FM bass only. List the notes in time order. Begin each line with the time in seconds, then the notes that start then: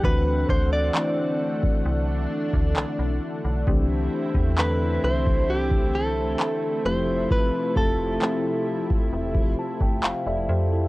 0.04 D2
0.49 D2
1.85 C2
2.53 D2
2.76 B1
2.99 B1
3.44 B1
3.67 C2
4.35 E2
5.03 C2
6.85 F1
7.76 F1
9.13 E1
9.81 G1
10.04 F1
10.27 F1
10.49 F2